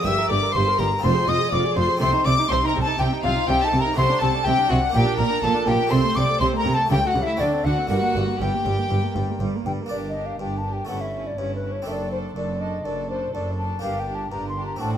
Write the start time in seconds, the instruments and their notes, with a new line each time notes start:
0.01 harpsichord A#3 E4 G4, violin section E5 E6
0.06 double bass section G1, harpsichord G2, cello section G2, viola section G4, flute E6
0.19 viola section A#4
0.29 double bass section G1, harpsichord G2, cello section G2, viola section G4, violin section D5 D6, flute D6
0.43 viola section A#4
0.53 double bass section G1, harpsichord G2, cello section G2, viola section G4, violin section C5 C6, flute C6
0.68 viola section A#4
0.78 double bass section G1, harpsichord G2, cello section G2, viola section G4, violin section A#4 A#5, flute A#5
0.93 viola section A#4
0.99 harpsichord C4 F4 G#4, violin section C5
1.03 double bass section F1, harpsichord F2, cello section F2, viola section F4, violin section C6, flute C6
1.16 viola section G#4
1.27 double bass section F1, harpsichord F2, cello section F2, viola section F4, violin section D#5 D#6, flute D#6
1.40 viola section G#4
1.51 double bass section F1, harpsichord F2, cello section F2, viola section F4, violin section D5 D6, flute D6
1.64 viola section G#4
1.75 double bass section F1, cello section F2, harpsichord F2, viola section F4, violin section C5 C6, flute C6
1.89 viola section G#4
1.97 cello section C3, harpsichord C4 D#4 A4, violin section C6
2.01 double bass section C2, harpsichord C3, viola section C4, violin section C5, flute C6
2.14 viola section D#4
2.25 double bass section C2, cello section C3, harpsichord C3, viola section C4, violin section D5 D6, flute D6
2.39 viola section D#4
2.48 double bass section C2, cello section C3, harpsichord C3, viola section C4, violin section C5 C6, flute C6
2.63 viola section D#4, violin section A#4, flute A#5
2.67 violin section A#5
2.74 double bass section C2, cello section C3, harpsichord C3, viola section C4
2.81 violin section A4 A5, flute A5
2.88 viola section D#4
2.99 double bass section C2, harpsichord C3, cello section C3, viola section C4, violin section G4 G5, flute G5
3.12 viola section D#4
3.23 double bass section C2, cello section C3, harpsichord C3, viola section C4, violin section F4 F5, flute F5
3.35 viola section D#4
3.47 double bass section C2, cello section C3, harpsichord C3, viola section C4, violin section G4 G5, flute G5
3.62 viola section D#4, violin section A4 A5, flute A5
3.73 double bass section C2, harpsichord C3, cello section C3, viola section C4
3.80 violin section A#4 A#5, flute A#5
3.86 viola section D#4
3.93 cello section C3, harpsichord A3 D4 F#4, viola section C4, violin section C6, flute C6
3.97 double bass section C2, harpsichord C3, violin section C5
4.10 viola section D4
4.21 double bass section C2, cello section C3, harpsichord C3, viola section C4, violin section A4 A5, flute A5
4.34 viola section D4
4.44 double bass section C2, harpsichord C3, cello section C3, viola section C4, violin section G4 G5, flute G5
4.58 viola section D4
4.69 double bass section C2, harpsichord C3, cello section C3, viola section C4, violin section F#4 F#5, flute F#5
4.82 viola section D4
4.89 harpsichord A#3 D4 G4
4.94 double bass section A#1, harpsichord A#2, cello section A#2, viola section A#3, violin section G4 G5, flute G5
5.07 viola section D4
5.17 double bass section A#1, harpsichord A#2, cello section A#2, viola section A#3, violin section A#4 A#5, flute A#5
5.32 viola section D4
5.42 double bass section A#1, cello section A#2, harpsichord A#2, viola section A#3, violin section A4 A5, flute A5
5.55 viola section D4
5.66 double bass section A#1, harpsichord A#2, cello section A#2, viola section A#3, violin section G4 G5, flute G5
5.80 viola section D4
5.87 cello section C3, harpsichord A3 D#4 A4, flute C6
5.91 double bass section C2, harpsichord C3, viola section C4, violin section C5 C6
6.04 viola section A3
6.15 double bass section C2, cello section C3, harpsichord C3, viola section C4, violin section D5 D6, flute D6
6.29 viola section A3
6.40 double bass section C2, cello section C3, harpsichord C3, viola section C4, violin section C5 C6, flute C6
6.53 viola section A3, flute A#5
6.58 violin section A#4 A#5
6.65 double bass section C2, cello section C3, harpsichord C3, viola section C4
6.74 violin section A4 A5, flute A5
6.79 viola section A3
6.86 cello section C#3, harpsichord A3 E4 A4
6.90 double bass section C#2, harpsichord C#3, viola section G3, violin section G4 G5, flute G5
7.02 viola section A3, violin section F#4
7.07 flute F#5, violin section F#5
7.15 double bass section C#2, cello section C#3, harpsichord C#3, viola section G3
7.22 violin section E4, flute E5
7.26 viola section A3, violin section E5
7.37 double bass section D2, cello section D3, harpsichord C4 F#4 A4, viola section D4, violin section D4, flute D5
7.41 harpsichord D3, violin section D5
7.53 viola section C4
7.64 double bass section D2, cello section D3, harpsichord D3, viola section D4, violin section F#4 F#5, flute F#5
7.77 viola section C4
7.87 double bass section G1, cello section G2, viola section G3, harpsichord A#3 D4 A#4, violin section F#4 F#5, flute F#5
7.92 harpsichord G2
8.03 viola section A#3
8.15 double bass section G1, cello section G2, harpsichord G2, viola section G3
8.27 viola section A#3
8.39 double bass section G1, cello section G2, harpsichord G2, viola section G3, violin section G4 G5, flute G5
8.52 viola section A#3
8.65 double bass section G1, cello section G2, harpsichord G2, viola section G3
8.78 viola section A#3
8.90 double bass section G1, cello section G2, harpsichord G2, viola section G3
9.03 viola section A#3
9.15 double bass section G1, cello section G2, harpsichord G2, viola section G3
9.30 viola section A#3
9.40 double bass section G1, cello section G2, harpsichord G2, viola section G3
9.54 viola section A#3
9.65 double bass section G1, cello section G2, harpsichord G2, viola section G3, flute G5
9.81 viola section A#3
9.86 harpsichord A#3 D4 D5
9.90 double bass section G1, cello section G2, harpsichord G2, viola section D4, violin section G4 A#4, flute D5
10.09 flute D#5
10.15 viola section D4, violin section G4 A#4
10.26 flute F5
10.39 double bass section G1, cello section G2, harpsichord G2, viola section D4, violin section G4 A#4, flute G5
10.58 flute A5
10.64 viola section D4, violin section G4 A#4
10.73 flute G5
10.85 double bass section G1, cello section G2, harpsichord A3 C#4 A4, violin section A4, flute F#5
10.89 harpsichord G2, viola section C#4, violin section E4
11.01 flute E5
11.14 viola section C#4, violin section E4 A4
11.27 flute D5
11.37 double bass section G1, cello section G2, harpsichord G2, viola section C#4, violin section E4 A4, flute C#5
11.56 flute B4
11.61 viola section C#4, violin section E4 A4
11.72 flute C#5
11.82 double bass section F#1, cello section F#2, harpsichord C4 D4 A4
11.86 harpsichord F#2, viola section D4, violin section A4 C5, flute E5
11.92 flute D5
12.11 viola section D4, violin section A4 C5, flute C5
12.35 double bass section F#1, cello section F#2, harpsichord F#2, viola section D4, violin section A4 C5, flute D5
12.60 viola section D4, violin section A4 C5, flute D#5
12.84 double bass section F#1, cello section F#2, harpsichord F#2, viola section D4, violin section A4 C5, flute D5
13.09 viola section D4, violin section A4 C5, flute C5
13.33 double bass section F#1, cello section F#2, harpsichord F#2, viola section D4, violin section A4 C5, flute D5
13.58 viola section D4, violin section A4 C5, flute A5
13.79 double bass section G1, harpsichord A#3 D4 G4, violin section G4 A#4, flute F5
13.83 cello section G2, harpsichord G2, viola section D4
14.00 flute G5
14.06 viola section D4, violin section G4 A#4
14.15 flute A5
14.30 double bass section G1, harpsichord G2, cello section G2, viola section D4, violin section G4 A#4, flute A#5
14.49 flute C6
14.56 viola section D4, violin section G4 A#4
14.66 flute A#5
14.76 double bass section A1, harpsichord C4 D4 F#4
14.80 cello section A2, harpsichord A2, viola section D4, violin section F#4 C5, flute A5
14.93 flute G5